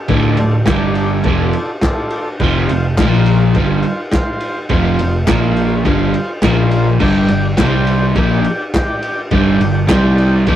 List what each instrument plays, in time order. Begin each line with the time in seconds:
0.08 picked electric bass D1, overdriven electric guitar D2 A2 D3, transistor combo organ F4 A4 D5, kick, ride
0.37 picked electric bass D1, overdriven electric guitar D2 A2, ride
0.66 picked electric bass G1, overdriven electric guitar G2 D3 G3, transistor combo organ D4 G4 D5, kick, snare, clap, ride
0.95 ride
1.23 picked electric bass F1, overdriven electric guitar F2 C3 F3, transistor combo organ F4 A4 D5, kick, ride
1.53 ride
1.81 transistor combo organ F4 A4 D5, kick, snare, clap, ride
2.10 ride
2.40 picked electric bass F1, overdriven electric guitar F2 C3 F3, transistor combo organ F4 C5 F5, kick, ride
2.69 picked electric bass F1, overdriven electric guitar F2 C3, ride
2.96 picked electric bass A#1, overdriven electric guitar A#2, transistor combo organ F4 A#4 F5, kick, snare, clap, ride
3.00 overdriven electric guitar F3 A#3
3.26 ride
3.54 picked electric bass G1, overdriven electric guitar G2 D3, transistor combo organ F4 C5 F5, kick, ride
3.58 overdriven electric guitar G3
3.83 ride
4.12 transistor combo organ F4 C5 F5, kick, snare, clap, ride
4.40 ride
4.69 picked electric bass F1, overdriven electric guitar F2 C3 F3, transistor combo organ F4 C5 F5, kick, ride
4.99 picked electric bass F1, overdriven electric guitar F2 C3, ride
5.27 picked electric bass A#1, overdriven electric guitar A#2 F3 A#3, transistor combo organ F4 A#4 F5, kick, snare, clap, ride
5.57 ride
5.84 picked electric bass G1, overdriven electric guitar G2 D3 G3, transistor combo organ F4 C5 F5, kick, ride
6.14 ride
6.42 picked electric bass A#1, overdriven electric guitar A#2 F3 A#3, transistor combo organ F4 A#4 F5, kick, snare, clap, ride
6.71 ride
7.00 picked electric bass G1, overdriven electric guitar G2 D3 G3, transistor combo organ G4 D5 G5, kick, crash
7.28 picked electric bass G1, overdriven electric guitar G2 D3, ride
7.57 picked electric bass C2, overdriven electric guitar C3 G3 C4, transistor combo organ G4 C5 G5, kick, snare, clap, ride
7.87 ride
8.16 picked electric bass A#1, overdriven electric guitar A#2 F3 A#3, transistor combo organ G4 D5 G5, kick, ride
8.44 ride
8.74 transistor combo organ G4 D5 G5, kick, snare, clap, ride
9.03 ride
9.31 picked electric bass G1, overdriven electric guitar G2 D3 G3, transistor combo organ G4 D5 G5, kick, ride
9.60 picked electric bass G1, overdriven electric guitar G2 D3, ride
9.87 picked electric bass C2, overdriven electric guitar C3 G3 C4, kick, snare, clap, ride
9.91 transistor combo organ G4 C5 G5
10.18 ride
10.47 picked electric bass A#1, overdriven electric guitar A#2 F3 A#3, transistor combo organ G4 D5 G5, kick, ride